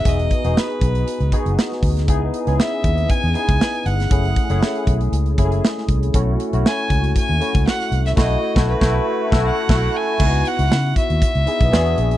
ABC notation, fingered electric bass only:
X:1
M:4/4
L:1/16
Q:"Swing 16ths" 1/4=118
K:C#m
V:1 name="Fingered electric bass" clef=bass
E,,,2 z E,,, z2 B,,,2 z C,, z F,,, z2 =D,,2 | C,,2 z C,, z2 D,,2 z E,, z C,, z2 =G,,,2 | F,,,2 z F,,, z2 B,,,2 C,,2 F,,,2 z2 =C,,2 | B,,,2 z B,,, z2 C,,2 z D,, z C,, z2 =C,,2 |
B,,,2 z B,,,2 B,,,2 z2 B,,,2 z B,,,2 z2 | C,,2 z C,, C,2 z D,, z C,, z B,,, E,,2 ^A,,,2 |]